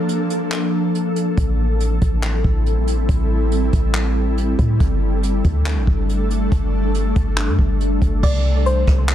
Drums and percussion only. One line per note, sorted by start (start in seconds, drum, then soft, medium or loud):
0.09 closed hi-hat medium
0.30 closed hi-hat medium
0.51 clap loud
0.51 closed hi-hat medium
0.95 closed hi-hat medium
1.16 closed hi-hat medium
1.37 kick loud
1.37 closed hi-hat medium
1.80 closed hi-hat medium
2.02 kick loud
2.02 closed hi-hat medium
2.23 clap loud
2.23 closed hi-hat medium
2.44 kick medium
2.66 closed hi-hat medium
2.87 closed hi-hat medium
3.09 kick loud
3.09 closed hi-hat medium
3.52 closed hi-hat medium
3.73 kick loud
3.73 closed hi-hat medium
3.94 clap loud
3.94 closed hi-hat medium
4.38 closed hi-hat medium
4.59 kick loud
4.59 closed hi-hat medium
4.80 kick loud
4.80 closed hi-hat medium
5.23 closed hi-hat medium
5.44 kick loud
5.44 closed hi-hat medium
5.66 clap loud
5.66 closed hi-hat medium
5.87 kick medium
6.09 closed hi-hat medium
6.30 closed hi-hat medium
6.52 kick loud
6.52 closed hi-hat medium
6.94 closed hi-hat medium
7.16 kick loud
7.16 closed hi-hat medium
7.38 clap loud
7.59 kick medium
7.80 closed hi-hat medium
8.02 kick medium
8.02 closed hi-hat medium
8.23 kick loud
8.23 crash loud
8.66 closed hi-hat medium
8.87 kick loud
8.87 cross-stick loud
8.87 closed hi-hat medium
9.09 clap loud
9.09 closed hi-hat medium